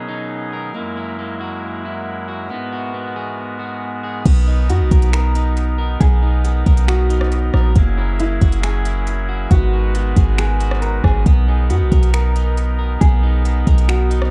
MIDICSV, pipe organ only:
0, 0, Header, 1, 2, 480
1, 0, Start_track
1, 0, Key_signature, 5, "major"
1, 0, Tempo, 437956
1, 823, Time_signature, 4, 2, 24, 8
1, 15679, End_track
2, 0, Start_track
2, 0, Title_t, "Pipe organ"
2, 0, Program_c, 0, 19
2, 0, Note_on_c, 0, 47, 63
2, 0, Note_on_c, 0, 54, 60
2, 0, Note_on_c, 0, 61, 62
2, 0, Note_on_c, 0, 63, 61
2, 0, Note_on_c, 0, 68, 76
2, 783, Note_off_c, 0, 61, 0
2, 783, Note_off_c, 0, 63, 0
2, 784, Note_off_c, 0, 47, 0
2, 803, Note_off_c, 0, 68, 0
2, 822, Note_on_c, 0, 64, 62
2, 823, Note_on_c, 0, 56, 60
2, 824, Note_on_c, 0, 42, 66
2, 825, Note_on_c, 0, 70, 72
2, 2698, Note_off_c, 0, 54, 0
2, 2723, Note_off_c, 0, 64, 0
2, 2724, Note_off_c, 0, 42, 0
2, 2742, Note_on_c, 0, 66, 59
2, 2743, Note_on_c, 0, 44, 65
2, 2744, Note_on_c, 0, 59, 58
2, 4624, Note_off_c, 0, 56, 0
2, 4626, Note_off_c, 0, 70, 0
2, 4643, Note_off_c, 0, 44, 0
2, 4643, Note_off_c, 0, 66, 0
2, 4644, Note_off_c, 0, 59, 0
2, 4665, Note_on_c, 0, 63, 77
2, 4666, Note_on_c, 0, 59, 66
2, 4667, Note_on_c, 0, 70, 71
2, 8465, Note_off_c, 0, 63, 0
2, 8466, Note_off_c, 0, 59, 0
2, 8466, Note_off_c, 0, 70, 0
2, 8502, Note_on_c, 0, 54, 72
2, 8503, Note_on_c, 0, 61, 62
2, 8503, Note_on_c, 0, 64, 65
2, 8503, Note_on_c, 0, 70, 81
2, 8504, Note_on_c, 0, 68, 61
2, 10403, Note_off_c, 0, 54, 0
2, 10403, Note_off_c, 0, 64, 0
2, 10404, Note_off_c, 0, 61, 0
2, 10404, Note_off_c, 0, 68, 0
2, 10423, Note_on_c, 0, 56, 70
2, 10423, Note_on_c, 0, 63, 65
2, 10424, Note_on_c, 0, 66, 61
2, 10424, Note_on_c, 0, 71, 77
2, 12305, Note_off_c, 0, 70, 0
2, 12324, Note_off_c, 0, 56, 0
2, 12324, Note_off_c, 0, 66, 0
2, 12324, Note_off_c, 0, 71, 0
2, 12342, Note_on_c, 0, 59, 62
2, 12342, Note_on_c, 0, 70, 73
2, 15679, Note_off_c, 0, 59, 0
2, 15679, Note_off_c, 0, 63, 0
2, 15679, Note_off_c, 0, 70, 0
2, 15679, End_track
0, 0, End_of_file